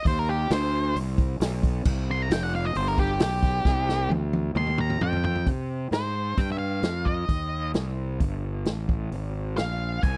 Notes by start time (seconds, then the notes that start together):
0.05 D#2 C5, kick, open hi-hat
0.19 A#4
0.29 G4
0.50 D2 C5, snare, open hi-hat
0.95 C2, open hi-hat
1.18 kick
1.40 B1, snare, open hi-hat
1.63 kick
1.85 C2, kick, crash
2.11 C6
2.22 A#5
2.30 F1 G5, snare, open hi-hat
2.43 F#5
2.55 F5
2.65 D#5
2.75 G1 C5, open hi-hat
2.88 A#4
2.98 G4, kick
3.20 B1 G4, snare, open hi-hat
3.43 kick
3.65 C2, kick, snare
3.89 snare
4.09 D2, high tom
4.33 high tom
4.55 D#2 C6, mid tom
4.67 mid tom
4.78 A#5, mid tom
4.90 mid tom
5.01 F2 G5, mid tom
5.13 floor tom
5.24 G5, floor tom
5.35 floor tom
5.46 C3, kick, open hi-hat
5.91 G#2 C5, snare, open hi-hat
6.37 G2 G5, kick, open hi-hat
6.52 E5
6.58 F5
6.83 F2, snare, open hi-hat
7.05 D#5, kick
7.28 D#2, kick, open hi-hat
7.74 C2, snare, open hi-hat
8.20 G1, kick, open hi-hat
8.65 A1, snare, open hi-hat
8.89 kick
9.12 G#1, open hi-hat
9.57 A#1 F5, snare, open hi-hat
10.03 C2 G#5, kick, open hi-hat